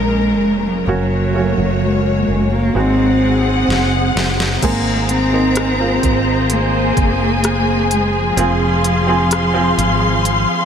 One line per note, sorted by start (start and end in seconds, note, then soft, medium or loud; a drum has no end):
0.00 0.41 A#1 medium
0.00 0.84 C#3 medium
0.00 0.68 G#3 medium
0.00 0.84 A#3 medium
0.00 0.86 A#4 medium
0.41 0.84 F1 medium
0.67 0.89 F#3 medium
0.87 1.54 F#1 medium
0.87 1.86 F#3 medium
0.87 1.32 A#3 medium
0.87 2.73 A#3 medium
0.87 1.33 C#4 medium
0.87 2.73 F#4 medium
0.87 1.33 F#4 medium
0.87 2.73 C#5 medium
1.34 1.41 A3 soft
1.34 2.75 C#4 medium
1.34 2.74 F#4 medium
1.41 2.78 A#3 medium
1.58 2.24 F#1 medium
1.84 2.53 G#3 medium
2.28 2.72 F#1 medium
2.54 2.79 A#3 medium
2.74 3.65 G#1 medium
2.74 4.12 G#2 medium
2.74 4.53 G#3 medium
2.74 4.53 C4 medium
2.74 4.61 C4 medium
2.74 3.70 C4 medium
2.74 4.54 F#4 medium
2.74 4.61 G#4 medium
2.74 4.61 F#5 medium
3.69 4.12 F#1 medium
3.69 snare soft
4.16 4.59 F#1 medium
4.16 snare medium
4.40 snare medium
4.62 5.99 G#1 medium
4.62 5.99 G#2 medium
4.62 5.29 A#3 medium
4.62 5.12 A#3 medium
4.62 5.30 C4 medium
4.62 5.30 G#4 medium
4.62 10.65 G#4 medium
4.62 8.34 C5 medium
4.62 6.49 A#5 medium
4.62 kick medium
4.62 closed hi-hat medium
4.62 crash medium
5.09 6.53 C4 loud
5.09 closed hi-hat medium
5.32 5.77 A#3 medium
5.32 5.78 C4 medium
5.32 5.78 D#4 medium
5.56 cross-stick medium
5.56 closed hi-hat medium
5.79 7.58 A#3 medium
5.79 7.58 C4 soft
5.79 7.59 F4 medium
6.03 6.93 G#1 medium
6.03 kick medium
6.03 closed hi-hat medium
6.50 7.93 A#3 medium
6.50 8.36 G#5 medium
6.50 closed hi-hat medium
6.97 8.34 F#1 medium
6.97 kick medium
6.97 closed hi-hat medium
7.44 cross-stick medium
7.44 closed hi-hat medium
7.91 8.17 G#3 medium
7.91 closed hi-hat medium
8.16 10.65 F3 medium
8.37 9.74 F1 medium
8.37 9.04 C4 medium
8.37 9.05 F4 medium
8.37 9.05 G#4 medium
8.37 10.65 F5 medium
8.37 10.65 C6 medium
8.37 closed hi-hat medium
8.84 closed hi-hat medium
9.07 9.52 C4 medium
9.07 9.53 F4 medium
9.07 9.53 G#4 medium
9.31 cross-stick medium
9.31 closed hi-hat medium
9.54 10.65 C4 medium
9.54 10.65 F4 medium
9.54 10.65 G#4 medium
9.78 10.45 G#1 medium
9.78 closed hi-hat medium
10.25 closed hi-hat medium